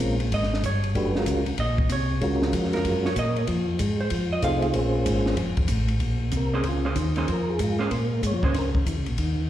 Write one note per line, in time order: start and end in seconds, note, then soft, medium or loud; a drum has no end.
0.00 0.31 A#1 medium
0.00 0.17 G#3 medium
0.00 0.17 C4 soft
0.00 0.18 C#4 soft
0.00 0.18 F4 medium
0.00 0.18 A#4 medium
0.00 kick soft
0.20 ride soft
0.32 0.63 G#1 medium
0.32 0.63 D#5 loud
0.32 kick soft
0.32 ride medium
0.43 snare soft
0.53 snare soft
0.63 0.95 G1 medium
0.63 1.13 C#5 medium
0.63 kick soft
0.63 hi-hat pedal medium
0.63 ride medium
0.84 ride soft
0.95 1.26 F#1 medium
0.95 1.14 A3 medium
0.95 1.14 D4 soft
0.95 1.14 F#4 soft
0.95 1.14 G4 soft
0.95 1.15 B4 medium
0.95 kick soft
0.95 ride medium
1.15 1.43 G#3 medium
1.15 1.44 C#4 medium
1.15 1.44 F4 medium
1.15 1.44 F#4 medium
1.15 1.44 A#4 medium
1.15 snare soft
1.26 1.46 C#2 medium
1.26 kick soft
1.26 hi-hat pedal medium
1.26 ride medium
1.46 1.53 C#2 soft
1.46 ride soft
1.58 1.89 A#1 medium
1.58 1.89 D#5 medium
1.58 kick soft
1.58 ride medium
1.78 kick medium
1.89 2.21 C2 medium
1.89 2.40 C#5 medium
1.89 kick soft
1.89 hi-hat pedal medium
1.89 ride medium
2.21 2.53 C#2 medium
2.21 3.09 G#3 medium
2.21 3.10 C#4 soft
2.21 3.10 F4 soft
2.21 3.10 F#4 soft
2.21 3.10 A#4 medium
2.21 kick soft
2.21 ride medium
2.42 snare medium
2.53 2.84 F2 medium
2.53 kick soft
2.53 hi-hat pedal medium
2.53 ride medium
2.64 snare soft
2.73 3.03 A#4 loud
2.73 snare soft
2.73 ride soft
2.85 3.16 F#2 medium
2.85 kick soft
2.85 ride medium
3.05 3.17 C#5 medium
3.05 snare medium
3.16 3.47 A#2 medium
3.16 3.38 D#5 loud
3.16 kick soft
3.16 hi-hat pedal medium
3.16 ride medium
3.36 3.49 C#5 loud
3.36 ride soft
3.47 3.79 F2 medium
3.47 kick soft
3.47 ride medium
3.79 4.10 G#2 medium
3.79 kick soft
3.79 hi-hat pedal medium
3.79 ride medium
4.01 4.30 C5 loud
4.10 4.42 F2 medium
4.10 kick soft
4.10 ride medium
4.32 4.43 D#5 loud
4.42 4.74 C2 loud
4.42 4.74 A3 medium
4.42 4.75 D#4 medium
4.42 4.74 F4 medium
4.42 4.74 G#4 medium
4.42 4.74 C5 medium
4.42 4.64 F5 loud
4.42 kick soft
4.42 hi-hat pedal medium
4.42 ride medium
4.62 4.71 D#5 loud
4.62 ride soft
4.74 5.05 A#1 medium
4.74 5.37 A#3 medium
4.74 5.38 C#4 medium
4.74 5.38 F4 medium
4.74 5.38 G#4 medium
4.74 5.38 C5 medium
4.74 kick soft
4.74 ride medium
5.06 5.37 G#1 loud
5.06 kick soft
5.06 hi-hat pedal medium
5.06 ride medium
5.26 snare medium
5.37 5.68 F1 medium
5.37 kick soft
5.37 ride medium
5.57 kick medium
5.57 ride soft
5.68 6.00 A1 loud
5.68 kick soft
5.68 hi-hat pedal medium
5.68 ride medium
5.88 ride soft
6.00 6.32 A#1 medium
6.00 kick soft
6.00 ride medium
6.32 6.63 C2 medium
6.32 kick soft
6.32 hi-hat pedal medium
6.32 ride medium
6.37 6.54 A#4 medium
6.54 6.64 A#3 medium
6.54 6.64 C#4 medium
6.54 6.64 G#4 medium
6.54 6.65 G#4 medium
6.54 6.64 C5 medium
6.64 6.95 C#2 medium
6.64 kick soft
6.64 ride medium
6.68 6.86 F4 medium
6.85 6.95 A#3 medium
6.85 6.95 C#4 medium
6.85 6.96 G#4 medium
6.85 6.96 C5 medium
6.96 7.27 D#2 medium
6.96 kick soft
6.96 hi-hat pedal medium
6.96 ride medium
7.16 7.27 A#3 medium
7.16 7.27 C#4 medium
7.16 7.28 G#4 medium
7.16 7.28 C5 medium
7.16 ride soft
7.28 7.58 F2 medium
7.28 kick soft
7.28 ride medium
7.32 7.50 A#4 medium
7.50 7.60 G#4 medium
7.59 7.90 G#2 medium
7.59 kick soft
7.59 hi-hat pedal medium
7.59 ride medium
7.64 7.81 F4 medium
7.79 7.90 A#3 medium
7.79 7.90 C#4 medium
7.79 7.90 G#4 medium
7.79 7.91 C5 medium
7.91 8.22 A#2 medium
7.91 kick soft
7.91 ride medium
8.23 8.33 G#2 loud
8.23 kick soft
8.23 hi-hat pedal medium
8.23 ride medium
8.27 8.44 C#5 medium
8.34 8.44 F2 medium
8.43 8.53 C#2 medium
8.43 8.53 A#3 medium
8.43 8.54 C#4 medium
8.43 8.54 G#4 medium
8.43 8.54 C5 medium
8.43 8.56 C5 medium
8.43 kick medium
8.54 8.85 C#2 medium
8.54 8.69 A#4 medium
8.54 kick soft
8.54 snare soft
8.54 ride medium
8.75 kick medium
8.86 8.96 E2 medium
8.86 kick soft
8.86 hi-hat pedal soft
8.86 ride medium
8.97 9.08 C#2 medium
9.06 9.18 A#1 medium
9.06 ride soft
9.18 9.49 D#2 medium
9.18 kick soft
9.18 ride medium